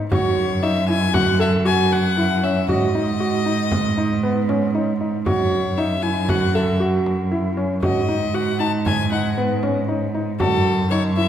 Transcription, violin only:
0.11 C#5
0.63 E5
0.89 G#5
1.15 F#5
1.41 E5
1.66 G#5
1.92 F#5
2.44 E5
2.69 D#5
5.27 C#5
5.77 E5
6.02 G#5
6.29 F#5
6.55 E5
7.83 D#5
8.34 F#5
8.60 A5
8.86 G#5
9.13 F#5
10.40 A4
10.91 C#5
11.16 E5

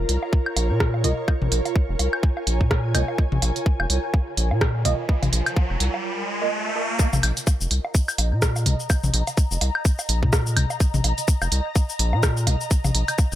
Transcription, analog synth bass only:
0.09 C2
0.57 A#1
0.70 A#2
1.04 C2
1.42 A#1
1.52 A#1
1.89 F1
1.99 C2
2.47 A#1
2.61 A#2
2.95 C2
3.32 A#1
3.42 A#1
3.80 F1
3.90 C2
4.37 A#1
4.51 A#2
4.85 C2
5.23 A#1
5.33 A#1
5.70 F1
5.80 C2
7.13 A#1
7.23 A#1
7.61 F1
7.71 C2
8.18 A#1
8.32 A#2
8.66 C2
9.04 A#1
9.14 A#1
9.51 F1
9.61 C2
10.09 A#1
10.23 A#2
10.57 C2
10.94 A#1
11.04 A#1
11.42 F1
11.52 C2
11.99 A#1
12.13 A#2
12.47 C2
12.85 A#1
12.95 A#1
13.32 F1

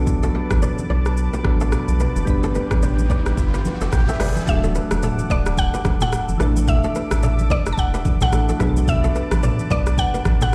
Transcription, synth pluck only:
4.49 E5
5.31 D5
5.59 F#5
6.02 F#5
6.68 E5
7.51 D5
7.73 A5
7.79 F#5
8.22 F#5
8.89 E5
9.71 D5
9.99 F#5
10.42 F#5

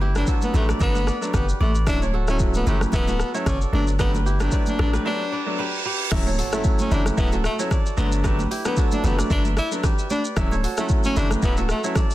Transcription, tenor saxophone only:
0.17 D4
0.43 B3
0.56 A3
0.82 B3
1.35 B3
1.62 A3
1.88 D4
2.29 C#4
2.56 B3
2.68 A3
2.95 B3
3.47 C#4
3.74 D4
4.01 B3
4.42 D4
4.68 D4
4.80 D4
5.07 D4
6.54 A3
6.81 C#4
6.92 D4
7.19 B3
7.45 A3
7.98 B3
8.66 B3
8.93 D4
9.05 B3
9.32 D4
9.58 E4
10.11 D4
10.79 A3
11.05 C#4
11.18 D4
11.44 B3
11.71 A3

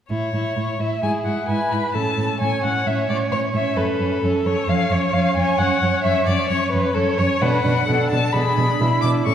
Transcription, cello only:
0.10 A2
0.33 A2
0.56 A2
0.79 A2
1.02 G#2
1.25 G#2
1.49 G#2
1.71 G#2
1.95 A2
2.17 A2
2.41 A2
2.64 A2
2.86 A2
3.09 A2
3.32 A2
3.54 A2
3.76 F#2
3.99 F#2
4.23 F#2
4.45 F#2
4.68 F2
4.90 F2
5.13 F2
5.36 F2
5.59 F#2
5.82 F#2
6.05 F#2
6.27 F#2
6.49 F#2
6.73 F#2
6.95 F#2
7.18 F#2
7.42 B2
7.65 B2
7.89 B2
8.11 B2
8.34 B2
8.57 B2
8.81 B2
9.03 B2
9.26 A2

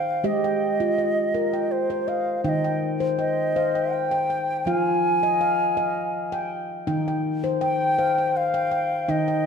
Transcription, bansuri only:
Already playing: F5
0.26 D#5
1.72 C5
2.08 F5
2.44 F5
2.48 D#5
3.19 D#5
3.92 G5
4.65 G#5
7.63 G5
8.37 F5
9.10 D#5

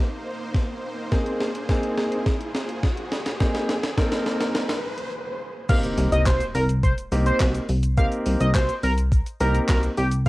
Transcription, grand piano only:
1.12 A#3 C4 D#4 G#4
1.69 A#3 C4 D#4 G#4
3.40 A#3 C4 D#4 G#4
3.98 A#3 C4 D#4 A#4
5.69 A#3 C4 D#4 G4 A#4
7.12 A#3 C4 D#4 G4 A#4
7.97 A#3 C4 D#4 G4 A#4
9.40 A#3 C4 D#4 G4 A#4

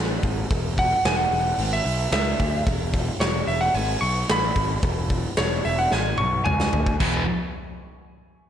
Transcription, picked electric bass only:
Already playing: A1
0.23 G#1
0.51 E1
1.05 E1
1.31 E1
1.58 G#1
1.85 B1
2.12 C#2
2.39 D2
2.67 E1
3.20 E1
3.47 E1
3.74 G#1
4.02 B1
4.30 A1
4.56 G#1
4.83 E1
5.38 E1
5.65 E1
5.92 G#1
6.19 B1
6.46 C#2
6.74 D2
7.00 E1

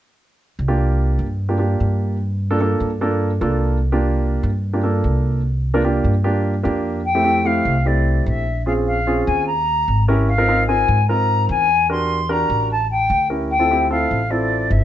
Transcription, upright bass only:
0.59 C2
1.19 G2
1.80 G2
2.80 G2
3.41 C2
4.43 G2
5.04 C2
6.04 G2
6.65 F2
7.65 C2
8.26 A#1
9.27 D#2
9.88 G#1
10.88 G#2
11.49 E2
12.49 A1
13.10 D2
14.11 A1
14.71 G1

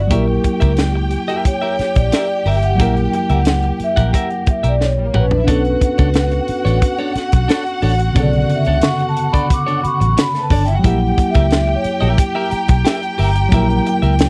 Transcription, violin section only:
0.00 F#5
0.10 G4 G5
4.98 G3 G4
5.06 A#3 A#4
5.15 B3 B4
5.23 C#4 C#5
5.32 D4 D5
5.39 E4 E5
5.48 F#4 F#5
10.34 A3 A4
10.42 B3 B4
10.50 C#4 C#5
10.58 D4 D5
10.67 E4 E5
10.74 F#4 F#5
10.83 G4 G5

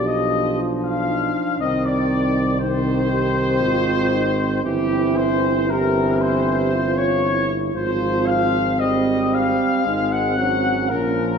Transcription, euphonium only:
Already playing: D4
1.60 C4
2.60 C4
4.64 C4
5.68 C4
7.74 C4
9.86 C4
10.93 C#4

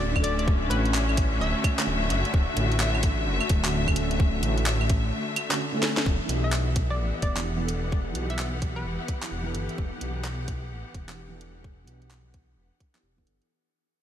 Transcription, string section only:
Already playing: D3 A3 C#4 F#4 E5
6.06 E3
6.23 B3
6.50 F#5
6.69 G4

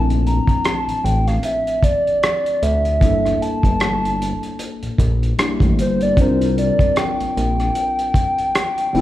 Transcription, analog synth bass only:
Already playing: A#1
0.48 A1
0.87 A1
1.04 A1
2.63 D2
3.02 G1
3.64 G1
4.83 A#1
4.99 A#1
5.61 A1
5.79 G1
6.17 C2
6.80 A#1
7.20 A#1
7.37 A#1
8.94 F1

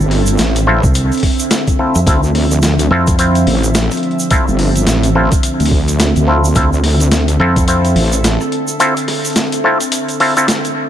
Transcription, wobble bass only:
0.00 G1
0.39 A1
2.07 D2
3.47 A1
4.48 G1
4.87 A1
5.60 D2
6.16 D2
6.55 D2
7.96 A1

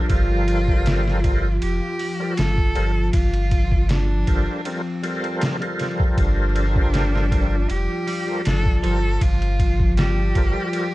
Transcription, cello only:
0.10 F4
1.61 G4
2.37 A4
3.13 F4
3.89 D4
4.66 C4
6.18 D4
7.70 G4
8.46 A4
8.83 A4
9.21 F4
9.97 G4

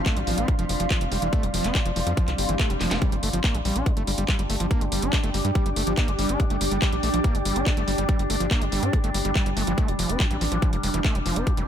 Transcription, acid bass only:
0.06 A3
0.17 F3
0.27 F3
0.38 C4
0.48 F3
0.59 F3
0.69 F3
0.80 F3
0.91 F3
1.01 F3
1.12 G3
1.22 E3
1.33 A3
1.43 F3
1.54 F3
1.64 C4
1.75 F3
1.86 F3
1.96 F3
2.07 F3
2.17 F3
2.28 F3
2.38 G3
2.49 E3
2.59 A3
2.70 F3
2.81 F3
2.91 C4
3.02 G3
3.12 G3
3.23 A3
3.33 F3
3.44 A#3
3.55 G3
3.65 G3
3.76 D4
3.86 G3
3.97 A3
4.07 G3
4.18 G3
4.29 G3
4.39 G3
4.50 A3
4.60 F3
4.71 A#3
4.81 G3
4.92 G3
5.02 D4
5.13 G3
5.24 A3
5.34 G3
5.45 G3
5.55 G3
5.66 G3
5.76 A3
5.87 F3
5.97 A#3
6.08 G3
6.19 G3
6.29 D4
6.40 G3
6.50 A3
6.61 G3
6.71 G3
6.82 G3
6.93 G3
7.03 A3
7.14 F3
7.24 A#3
7.35 G3
7.45 G3
7.56 D4
7.67 G3
7.77 A3
7.88 G3
7.98 G3
8.09 G3
8.19 G3
8.30 A3
8.40 F3
8.51 A#3
8.62 G3
8.72 G3
8.83 D4
8.93 G3
9.04 A3
9.14 G3
9.25 G3
9.36 G3
9.46 G3
9.57 A3
9.67 F3
9.78 A3
9.88 F3
9.99 F3
10.09 C4
10.20 F3
10.31 G3
10.41 F3
10.52 F3
10.62 F3
10.73 F3
10.83 G3
10.94 E3
11.05 A3
11.15 F3
11.26 F3
11.36 C4
11.47 F3
11.57 G3

